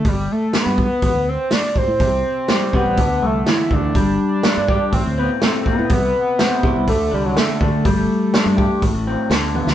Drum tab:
HH |o---o---o---o---|o---o---o---o---|o---o---o---o---|o---o---o---o---|
SD |----o-------o---|----o-------o---|----o-------o---|----o-------o---|
T1 |----------------|----------------|----------------|----------------|
BD |o-----o-o-----o-|o-----o-o-----o-|o-----o-o-----o-|o-----o-o-----o-|

HH |o---o---o---o---|
SD |----o-------o--o|
T1 |--------------o-|
BD |o-----o-o-------|